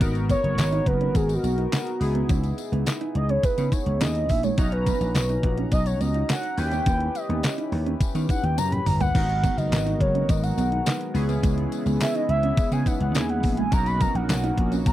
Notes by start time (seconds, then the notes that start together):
0.00 G#1 B3 D#4 F#4 A#4, kick, closed hi-hat, tambourine
0.15 closed hi-hat, tambourine
0.29 B3 C#5, kick, closed hi-hat, tambourine
0.44 F#1, closed hi-hat
0.58 G#1, snare, clap, closed hi-hat, tambourine
0.72 D#4, closed hi-hat
0.86 F#1 B4, kick, closed hi-hat
1.01 C#4, closed hi-hat
1.15 G#1 G#4, muted clean electric guitar stroke, kick, closed hi-hat, tambourine
1.29 closed hi-hat, tambourine
1.34 F#4
1.43 B1 B3, closed hi-hat, tambourine
1.58 D#4, closed hi-hat
1.72 D#4, snare, clap, closed hi-hat, tambourine
1.87 muted clean electric guitar stroke, closed hi-hat
2.00 C#2 B3 D#4 E4 G#4, open hi-hat, tambourine
2.15 B3, closed hi-hat
2.29 C#2 C#4, kick, closed hi-hat, tambourine
2.44 closed hi-hat, tambourine
2.58 muted clean electric guitar stroke, closed hi-hat, tambourine
2.72 C#2 B3, closed hi-hat
2.86 snare, clap, closed hi-hat, tambourine
3.01 D#4, closed hi-hat
3.15 C#2 D#5, muted clean electric guitar stroke, closed hi-hat
3.29 C#4 C#5, closed hi-hat
3.43 B4, muted slap bass stroke, muted clean electric guitar stroke, kick, closed hi-hat, tambourine
3.58 C#3 B3, closed hi-hat, tambourine
3.72 D#4 C#5, kick, closed hi-hat, tambourine
3.86 C#2, closed hi-hat
4.01 D#2 C#4 D#5, snare, clap, closed hi-hat, tambourine
4.15 closed hi-hat
4.29 A#1 E5, muted clean electric guitar stroke, kick, open hi-hat, tambourine
4.43 G#3 C#5, closed hi-hat, tambourine
4.57 B1 C#4 D#4 F#4 D#5 A#5, kick, closed hi-hat, tambourine
4.72 B4, closed hi-hat
4.86 B3, kick, closed hi-hat, tambourine
5.01 A#1, muted clean electric guitar stroke, closed hi-hat, tambourine
5.15 B1, snare, clap, closed hi-hat, tambourine
5.29 D#4, closed hi-hat
5.43 A#1, kick, closed hi-hat
5.58 C#4, closed hi-hat
5.72 B1 D#5, muted clean electric guitar stroke, kick, closed hi-hat, tambourine
5.86 C#5, closed hi-hat, tambourine
6.00 C#2 B3 D#5, closed hi-hat, tambourine
6.14 D#4, closed hi-hat
6.29 D#4 F#5, snare, clap, closed hi-hat, tambourine
6.43 muted clean electric guitar stroke, closed hi-hat
6.57 D#2 C#4 E4 F#4 B4 G5, open hi-hat, tambourine
6.65 G4
6.71 C#4, closed hi-hat, tambourine
6.86 D#2 D#4, kick, closed hi-hat, tambourine
7.00 closed hi-hat
7.15 D#5, muted clean electric guitar stroke, closed hi-hat, tambourine
7.29 D#2 B3, closed hi-hat
7.43 snare, clap, closed hi-hat, tambourine
7.58 D#4, closed hi-hat
7.72 D#2, muted clean electric guitar stroke, open hi-hat
7.86 C#4, closed hi-hat
8.01 muted slap bass stroke, kick, closed hi-hat, tambourine
8.15 D#3 B3, closed hi-hat, tambourine
8.29 D#4 F#5, kick, closed hi-hat, tambourine
8.43 D#2 G5, closed hi-hat
8.58 F#2 C#4 A#5, closed hi-hat, high tom, tambourine
8.72 B5, closed hi-hat, mid tom
8.86 G1 A#5, muted clean electric guitar stroke, mid tom, open hi-hat, tambourine
9.00 A#3 F#5, closed hi-hat, floor tom, tambourine
9.14 G#1 D#3 F#3 G#3 B3 D#4 F#4 A#4, kick, crash, tambourine
9.29 closed hi-hat, tambourine
9.43 B3, kick, closed hi-hat, tambourine
9.57 F#1 D#5, muted clean electric guitar stroke, closed hi-hat, tambourine
9.72 G#1, snare, clap, closed hi-hat, tambourine
9.86 D#4, closed hi-hat
10.00 F#1 C#5, kick, closed hi-hat
10.15 C#4, closed hi-hat
10.29 G#1 D#5, muted clean electric guitar stroke, kick, closed hi-hat, tambourine
10.43 F#5, closed hi-hat, tambourine
10.57 B1 B3, closed hi-hat, tambourine
10.72 D#4, closed hi-hat
10.86 D#4, snare, clap, closed hi-hat, tambourine
11.01 muted clean electric guitar stroke, closed hi-hat
11.14 C#2 C#3 E3 B3 C#4 E4 G#4, open hi-hat, tambourine
11.29 B3, closed hi-hat, tambourine
11.43 C#2 C#4, kick, closed hi-hat, tambourine
11.58 closed hi-hat
11.72 muted clean electric guitar stroke, closed hi-hat, tambourine
11.86 C#2 B3, closed hi-hat, tambourine
12.00 E5, snare, clap, closed hi-hat, tambourine
12.15 D#4 D#5, closed hi-hat
12.29 C#2 E5, closed hi-hat
12.43 C#4, closed hi-hat
12.57 muted slap bass stroke, kick, closed hi-hat, tambourine
12.72 C#3 B3 G#5, closed hi-hat, tambourine
12.86 D#4 F#5, kick, closed hi-hat, tambourine
13.00 C#2 F#5, closed hi-hat
13.15 D#2 C#4 G#5, snare, clap, closed hi-hat, tambourine
13.29 F#5, closed hi-hat
13.43 A#1, muted clean electric guitar stroke, kick, open hi-hat, tambourine
13.57 G#3 G#5, closed hi-hat
13.71 B1 B2 F#3 A#3 C#4 D#4 F#4 A#4 A#5, kick, closed hi-hat, tambourine
13.86 B5, closed hi-hat, tambourine
14.01 B3 A#5, kick, closed hi-hat, tambourine
14.15 A#1 F#5, muted clean electric guitar stroke, closed hi-hat
14.29 B1, snare, clap, closed hi-hat, tambourine
14.44 D#4, closed hi-hat
14.57 A#1, kick, closed hi-hat
14.72 C#4, closed hi-hat, tambourine
14.86 B1 A#5, muted clean electric guitar stroke, kick, closed hi-hat, tambourine